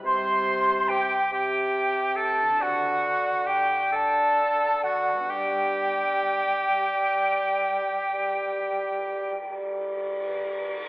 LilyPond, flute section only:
\new Staff \with { instrumentName = "Flute section" } { \time 12/8 \key g \major \tempo 4. = 43 c'''4 g''8 g''4 a''8 fis''4 g''8 a''4 fis''8 | g''1~ g''8 r4. | }